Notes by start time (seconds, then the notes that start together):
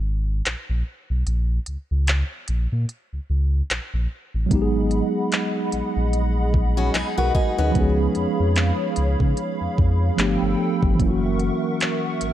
Already playing: G#1
0.46 A#1, clap, closed hi-hat
0.70 A#1
1.10 B1
1.27 A#1, closed hi-hat
1.66 C#2, closed hi-hat
1.91 C#2
2.07 clap, closed hi-hat
2.48 A#1, closed hi-hat
2.72 A#2
2.89 closed hi-hat
3.13 C#2
3.30 C#2
3.70 A#1, clap, closed hi-hat
3.94 A#1
4.34 A1
4.46 F#3 G#3
4.51 G#1 B3 D#4 G#4 D#5 F#5 B5, kick, closed hi-hat
4.55 G4
4.62 G#4
4.91 closed hi-hat
5.32 clap, closed hi-hat
5.72 A#1, closed hi-hat
5.97 A#1
6.13 closed hi-hat
6.54 kick
6.77 C#4 F#4
6.94 B1 D#4 G#4, clap, closed hi-hat
7.18 B1 F#4 A#4 B4 F#5
7.35 D#4 F#4 G#4 D#5, kick
7.58 D2 C#4 D#4 F#4 B4
7.71 F3 G#3 C#5 F5, kick, closed hi-hat
7.75 C#2 B3 C#4
7.80 G#4
8.15 F2, closed hi-hat
8.40 F2
8.56 clap, closed hi-hat
8.96 C#2, closed hi-hat
9.20 C#3, kick
9.37 closed hi-hat
9.61 F2
9.78 F2, kick
10.16 G1 F3 A3 B3 D4 A4 G5, clap, closed hi-hat
10.21 G4
10.42 G1
10.83 G1, kick
10.95 E3 F#3
10.99 F#1 A#3 C#4 A#4 E5 F#5 C#6, kick, closed hi-hat
11.04 E4
11.10 F#4
11.39 closed hi-hat
11.80 clap, closed hi-hat
12.21 G#1, closed hi-hat